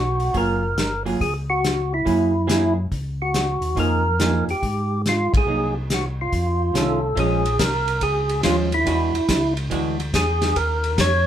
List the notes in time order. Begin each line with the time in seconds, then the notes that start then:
Already playing: B1 F#4
0.20 open hi-hat
0.33 F#1 F#3 A#3 F4 G#4, kick, open hi-hat
0.37 A#4
0.76 G1, snare, closed hi-hat
1.05 F#3 A#3 F4 G#4, open hi-hat
1.21 C#2 G#4, kick, open hi-hat
1.50 F#4
1.64 snare, closed hi-hat
1.94 E4
2.05 F#2 F#3 A#3 E4 G#4, kick, open hi-hat
2.47 F#3 A#3 E4 G#4, snare, closed hi-hat
2.92 C#2, kick, open hi-hat
3.22 F#4
3.34 snare, closed hi-hat
3.61 D#2, open hi-hat
3.76 F2 F3 A#3 D#4 G#4 A#4, kick, open hi-hat
4.19 F3 A#3 D#4 G#4, snare, closed hi-hat
4.47 F2 G4, open hi-hat
4.62 G#2, kick, open hi-hat
5.06 F4, snare, closed hi-hat
5.33 G#2 G#4, kick, ride
5.46 C2 F#3 A#3 D#4
5.90 F#4, snare, closed hi-hat
6.21 F4
6.32 F2, kick, open hi-hat
6.72 C2 D#3 A3 C#4, snare, closed hi-hat
6.77 A4
7.15 A#1 F3 G#3 C#4, kick, ride
7.20 G#4
7.45 ride
7.59 C2 A#4, kick, snare, hi-hat pedal, ride
7.88 ride
8.01 C#2 G#4, kick, ride
8.29 ride
8.43 D#2 F3 G#3 C#4 F4, kick, snare, hi-hat pedal, ride
8.72 E4, ride
8.85 E2 E3 G#3 D4 F#4, kick, ride
9.13 E2, ride
9.28 C#2, kick, snare, hi-hat pedal, ride
9.57 ride
9.70 D2 E3 G#3 D4 F#4, kick, ride
10.00 ride
10.13 E2 G#4, kick, snare, hi-hat pedal, ride
10.42 snare, ride
10.56 D#2 A#4, kick, ride
10.84 ride
10.98 F2 C#5, kick, snare, hi-hat pedal, ride